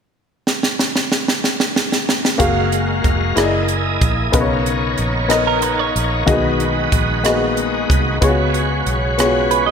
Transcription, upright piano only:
0, 0, Header, 1, 2, 480
1, 0, Start_track
1, 0, Key_signature, 6, "major"
1, 0, Tempo, 647110
1, 338, Time_signature, 6, 3, 24, 8
1, 7202, End_track
2, 0, Start_track
2, 0, Title_t, "Upright piano"
2, 0, Program_c, 0, 0
2, 1765, Note_on_c, 0, 58, 71
2, 1771, Note_on_c, 0, 66, 64
2, 1775, Note_on_c, 0, 68, 64
2, 1781, Note_on_c, 0, 77, 74
2, 1895, Control_c, 0, 64, 127
2, 2258, Note_off_c, 0, 58, 0
2, 2261, Note_off_c, 0, 66, 0
2, 2263, Note_off_c, 0, 68, 0
2, 2266, Note_off_c, 0, 77, 0
2, 2491, Note_on_c, 0, 58, 59
2, 2494, Note_on_c, 0, 64, 59
2, 2499, Note_on_c, 0, 68, 58
2, 2506, Note_on_c, 0, 74, 54
2, 2508, Control_c, 0, 64, 0
2, 2550, Note_off_c, 0, 74, 0
2, 2550, Note_on_c, 0, 75, 64
2, 2644, Control_c, 0, 64, 127
2, 2981, Note_off_c, 0, 58, 0
2, 2982, Note_off_c, 0, 64, 0
2, 2985, Note_off_c, 0, 68, 0
2, 3010, Note_off_c, 0, 75, 0
2, 3207, Note_on_c, 0, 59, 69
2, 3209, Note_on_c, 0, 63, 62
2, 3214, Note_on_c, 0, 49, 58
2, 3217, Note_on_c, 0, 70, 61
2, 3219, Note_on_c, 0, 71, 62
2, 3228, Control_c, 0, 64, 0
2, 3267, Note_off_c, 0, 71, 0
2, 3268, Note_on_c, 0, 73, 78
2, 3372, Control_c, 0, 64, 127
2, 3699, Note_off_c, 0, 59, 0
2, 3700, Note_off_c, 0, 63, 0
2, 3704, Note_off_c, 0, 70, 0
2, 3729, Note_off_c, 0, 73, 0
2, 3907, Note_off_c, 0, 49, 0
2, 3920, Note_on_c, 0, 59, 66
2, 3923, Note_on_c, 0, 63, 56
2, 3927, Note_on_c, 0, 70, 60
2, 3933, Note_on_c, 0, 75, 67
2, 4416, Note_off_c, 0, 59, 0
2, 4417, Note_off_c, 0, 63, 0
2, 4419, Note_off_c, 0, 70, 0
2, 4422, Note_off_c, 0, 75, 0
2, 4642, Note_on_c, 0, 58, 57
2, 4647, Note_on_c, 0, 51, 54
2, 4648, Note_on_c, 0, 66, 69
2, 4652, Note_on_c, 0, 68, 62
2, 4657, Note_on_c, 0, 75, 82
2, 4667, Control_c, 0, 64, 0
2, 4689, Note_on_c, 0, 59, 70
2, 4699, Note_off_c, 0, 58, 0
2, 4777, Control_c, 0, 64, 127
2, 5140, Note_off_c, 0, 66, 0
2, 5142, Note_off_c, 0, 68, 0
2, 5144, Note_off_c, 0, 75, 0
2, 5160, Note_off_c, 0, 59, 0
2, 5343, Note_off_c, 0, 51, 0
2, 5369, Note_on_c, 0, 58, 51
2, 5369, Note_on_c, 0, 66, 55
2, 5374, Note_on_c, 0, 68, 56
2, 5377, Note_on_c, 0, 75, 70
2, 5414, Note_on_c, 0, 59, 64
2, 5422, Note_off_c, 0, 58, 0
2, 5861, Note_off_c, 0, 66, 0
2, 5863, Note_off_c, 0, 68, 0
2, 5864, Note_off_c, 0, 75, 0
2, 5883, Note_off_c, 0, 59, 0
2, 6092, Note_on_c, 0, 59, 69
2, 6097, Note_on_c, 0, 65, 55
2, 6101, Note_on_c, 0, 49, 53
2, 6103, Note_on_c, 0, 68, 65
2, 6106, Note_on_c, 0, 73, 80
2, 6108, Control_c, 0, 64, 0
2, 6147, Note_off_c, 0, 65, 0
2, 6147, Note_on_c, 0, 66, 67
2, 6255, Control_c, 0, 64, 127
2, 6582, Note_off_c, 0, 59, 0
2, 6587, Note_off_c, 0, 68, 0
2, 6589, Note_off_c, 0, 73, 0
2, 6610, Note_off_c, 0, 66, 0
2, 6791, Note_off_c, 0, 49, 0
2, 6809, Note_on_c, 0, 59, 59
2, 6814, Note_on_c, 0, 65, 45
2, 6819, Note_on_c, 0, 68, 59
2, 6828, Note_on_c, 0, 73, 69
2, 6861, Note_on_c, 0, 66, 58
2, 6865, Note_off_c, 0, 65, 0
2, 7202, Note_off_c, 0, 59, 0
2, 7202, Note_off_c, 0, 66, 0
2, 7202, Note_off_c, 0, 68, 0
2, 7202, Note_off_c, 0, 73, 0
2, 7202, End_track
0, 0, End_of_file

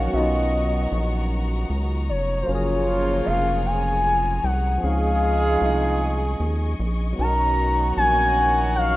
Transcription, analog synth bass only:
0, 0, Header, 1, 2, 480
1, 0, Start_track
1, 0, Tempo, 784314
1, 72, Time_signature, 6, 3, 24, 8
1, 5487, End_track
2, 0, Start_track
2, 0, Title_t, "Analog synth bass"
2, 0, Program_c, 0, 38
2, 84, Note_on_c, 0, 35, 100
2, 534, Note_off_c, 0, 35, 0
2, 563, Note_on_c, 0, 34, 93
2, 1013, Note_off_c, 0, 34, 0
2, 1040, Note_on_c, 0, 37, 91
2, 1282, Note_on_c, 0, 29, 101
2, 1291, Note_off_c, 0, 37, 0
2, 1493, Note_off_c, 0, 29, 0
2, 1519, Note_on_c, 0, 30, 91
2, 1971, Note_off_c, 0, 30, 0
2, 2004, Note_on_c, 0, 29, 93
2, 2693, Note_off_c, 0, 29, 0
2, 2716, Note_on_c, 0, 36, 104
2, 2930, Note_off_c, 0, 36, 0
2, 2959, Note_on_c, 0, 37, 97
2, 3411, Note_off_c, 0, 37, 0
2, 3436, Note_on_c, 0, 36, 81
2, 3890, Note_off_c, 0, 36, 0
2, 3917, Note_on_c, 0, 39, 81
2, 4131, Note_off_c, 0, 39, 0
2, 4159, Note_on_c, 0, 34, 96
2, 4372, Note_off_c, 0, 34, 0
2, 4400, Note_on_c, 0, 35, 107
2, 4852, Note_off_c, 0, 35, 0
2, 4879, Note_on_c, 0, 34, 92
2, 5487, Note_off_c, 0, 34, 0
2, 5487, End_track
0, 0, End_of_file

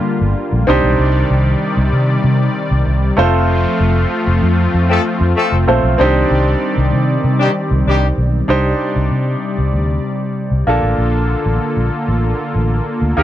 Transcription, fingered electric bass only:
0, 0, Header, 1, 2, 480
1, 0, Start_track
1, 0, Tempo, 625000
1, 761, Time_signature, 4, 2, 24, 8
1, 10161, End_track
2, 0, Start_track
2, 0, Title_t, "Fingered electric bass"
2, 0, Program_c, 0, 33
2, 163, Note_on_c, 0, 31, 91
2, 252, Note_off_c, 0, 31, 0
2, 404, Note_on_c, 0, 34, 92
2, 493, Note_off_c, 0, 34, 0
2, 524, Note_on_c, 0, 36, 94
2, 613, Note_off_c, 0, 36, 0
2, 644, Note_on_c, 0, 35, 94
2, 733, Note_off_c, 0, 35, 0
2, 763, Note_on_c, 0, 36, 101
2, 942, Note_off_c, 0, 36, 0
2, 1003, Note_on_c, 0, 36, 100
2, 1182, Note_off_c, 0, 36, 0
2, 1361, Note_on_c, 0, 36, 102
2, 1451, Note_off_c, 0, 36, 0
2, 1480, Note_on_c, 0, 48, 109
2, 1660, Note_off_c, 0, 48, 0
2, 1721, Note_on_c, 0, 48, 111
2, 1901, Note_off_c, 0, 48, 0
2, 2083, Note_on_c, 0, 36, 97
2, 2172, Note_off_c, 0, 36, 0
2, 2201, Note_on_c, 0, 36, 90
2, 2381, Note_off_c, 0, 36, 0
2, 2440, Note_on_c, 0, 29, 90
2, 2800, Note_off_c, 0, 29, 0
2, 2921, Note_on_c, 0, 29, 97
2, 3101, Note_off_c, 0, 29, 0
2, 3281, Note_on_c, 0, 29, 102
2, 3371, Note_off_c, 0, 29, 0
2, 3401, Note_on_c, 0, 41, 99
2, 3581, Note_off_c, 0, 41, 0
2, 3641, Note_on_c, 0, 41, 101
2, 3821, Note_off_c, 0, 41, 0
2, 4000, Note_on_c, 0, 41, 94
2, 4090, Note_off_c, 0, 41, 0
2, 4240, Note_on_c, 0, 29, 91
2, 4330, Note_off_c, 0, 29, 0
2, 4358, Note_on_c, 0, 34, 92
2, 4450, Note_off_c, 0, 34, 0
2, 4481, Note_on_c, 0, 35, 89
2, 4571, Note_off_c, 0, 35, 0
2, 4604, Note_on_c, 0, 36, 102
2, 4783, Note_off_c, 0, 36, 0
2, 4845, Note_on_c, 0, 36, 102
2, 5024, Note_off_c, 0, 36, 0
2, 5203, Note_on_c, 0, 36, 108
2, 5292, Note_off_c, 0, 36, 0
2, 5323, Note_on_c, 0, 48, 105
2, 5502, Note_off_c, 0, 48, 0
2, 5561, Note_on_c, 0, 48, 100
2, 5741, Note_off_c, 0, 48, 0
2, 5922, Note_on_c, 0, 36, 90
2, 6012, Note_off_c, 0, 36, 0
2, 6042, Note_on_c, 0, 36, 94
2, 6222, Note_off_c, 0, 36, 0
2, 6279, Note_on_c, 0, 35, 81
2, 6460, Note_off_c, 0, 35, 0
2, 6518, Note_on_c, 0, 36, 89
2, 6699, Note_off_c, 0, 36, 0
2, 6882, Note_on_c, 0, 36, 87
2, 6972, Note_off_c, 0, 36, 0
2, 6999, Note_on_c, 0, 48, 89
2, 7180, Note_off_c, 0, 48, 0
2, 7360, Note_on_c, 0, 36, 84
2, 7450, Note_off_c, 0, 36, 0
2, 7479, Note_on_c, 0, 38, 85
2, 7660, Note_off_c, 0, 38, 0
2, 8075, Note_on_c, 0, 36, 75
2, 8167, Note_off_c, 0, 36, 0
2, 8197, Note_on_c, 0, 34, 87
2, 8289, Note_off_c, 0, 34, 0
2, 8317, Note_on_c, 0, 33, 80
2, 8408, Note_off_c, 0, 33, 0
2, 8435, Note_on_c, 0, 34, 97
2, 8708, Note_off_c, 0, 34, 0
2, 8800, Note_on_c, 0, 33, 82
2, 8890, Note_off_c, 0, 33, 0
2, 9037, Note_on_c, 0, 34, 80
2, 9129, Note_off_c, 0, 34, 0
2, 9281, Note_on_c, 0, 33, 91
2, 9461, Note_off_c, 0, 33, 0
2, 9641, Note_on_c, 0, 33, 90
2, 9821, Note_off_c, 0, 33, 0
2, 9997, Note_on_c, 0, 38, 81
2, 10088, Note_off_c, 0, 38, 0
2, 10119, Note_on_c, 0, 39, 91
2, 10161, Note_off_c, 0, 39, 0
2, 10161, End_track
0, 0, End_of_file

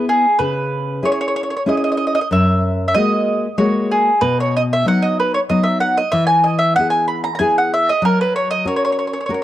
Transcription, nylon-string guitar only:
0, 0, Header, 1, 2, 480
1, 0, Start_track
1, 0, Tempo, 638298
1, 282, Time_signature, 3, 2, 24, 8
1, 7097, End_track
2, 0, Start_track
2, 0, Title_t, "Nylon-string guitar"
2, 0, Program_c, 0, 24
2, 0, Note_on_c, 0, 59, 48
2, 0, Note_on_c, 0, 64, 34
2, 0, Note_on_c, 0, 68, 42
2, 186, Note_off_c, 0, 59, 0
2, 188, Note_off_c, 0, 68, 0
2, 190, Note_off_c, 0, 64, 0
2, 297, Note_on_c, 0, 49, 59
2, 757, Note_off_c, 0, 49, 0
2, 772, Note_on_c, 0, 61, 38
2, 773, Note_on_c, 0, 64, 33
2, 778, Note_on_c, 0, 68, 34
2, 1153, Note_off_c, 0, 64, 0
2, 1154, Note_off_c, 0, 61, 0
2, 1157, Note_off_c, 0, 68, 0
2, 1249, Note_on_c, 0, 61, 43
2, 1253, Note_on_c, 0, 64, 41
2, 1260, Note_on_c, 0, 68, 47
2, 1632, Note_off_c, 0, 61, 0
2, 1635, Note_off_c, 0, 64, 0
2, 1639, Note_off_c, 0, 68, 0
2, 1736, Note_on_c, 0, 42, 58
2, 2199, Note_off_c, 0, 42, 0
2, 2222, Note_on_c, 0, 56, 38
2, 2222, Note_on_c, 0, 58, 31
2, 2224, Note_on_c, 0, 66, 42
2, 2603, Note_off_c, 0, 58, 0
2, 2604, Note_off_c, 0, 56, 0
2, 2605, Note_off_c, 0, 66, 0
2, 2690, Note_on_c, 0, 56, 43
2, 2694, Note_on_c, 0, 58, 35
2, 2702, Note_on_c, 0, 66, 42
2, 3078, Note_off_c, 0, 56, 0
2, 3080, Note_off_c, 0, 58, 0
2, 3086, Note_off_c, 0, 66, 0
2, 3170, Note_on_c, 0, 47, 65
2, 3641, Note_off_c, 0, 47, 0
2, 3650, Note_on_c, 0, 54, 33
2, 3656, Note_on_c, 0, 59, 33
2, 3661, Note_on_c, 0, 63, 36
2, 4037, Note_off_c, 0, 54, 0
2, 4041, Note_off_c, 0, 59, 0
2, 4043, Note_off_c, 0, 63, 0
2, 4133, Note_on_c, 0, 54, 37
2, 4139, Note_on_c, 0, 59, 33
2, 4141, Note_on_c, 0, 63, 45
2, 4517, Note_off_c, 0, 54, 0
2, 4520, Note_off_c, 0, 59, 0
2, 4521, Note_off_c, 0, 63, 0
2, 4609, Note_on_c, 0, 52, 53
2, 5074, Note_off_c, 0, 52, 0
2, 5098, Note_on_c, 0, 59, 36
2, 5108, Note_on_c, 0, 64, 32
2, 5110, Note_on_c, 0, 68, 37
2, 5477, Note_off_c, 0, 59, 0
2, 5483, Note_off_c, 0, 64, 0
2, 5483, Note_off_c, 0, 68, 0
2, 5560, Note_on_c, 0, 64, 37
2, 5564, Note_on_c, 0, 59, 41
2, 5569, Note_on_c, 0, 68, 49
2, 5945, Note_off_c, 0, 64, 0
2, 5947, Note_off_c, 0, 59, 0
2, 5949, Note_off_c, 0, 68, 0
2, 6030, Note_on_c, 0, 54, 65
2, 6501, Note_off_c, 0, 54, 0
2, 6506, Note_on_c, 0, 61, 34
2, 6508, Note_on_c, 0, 66, 30
2, 6508, Note_on_c, 0, 70, 41
2, 6896, Note_off_c, 0, 70, 0
2, 6897, Note_off_c, 0, 61, 0
2, 6897, Note_off_c, 0, 66, 0
2, 6986, Note_on_c, 0, 61, 42
2, 6991, Note_on_c, 0, 66, 39
2, 6996, Note_on_c, 0, 70, 50
2, 7097, Note_off_c, 0, 61, 0
2, 7097, Note_off_c, 0, 66, 0
2, 7097, Note_off_c, 0, 70, 0
2, 7097, End_track
0, 0, End_of_file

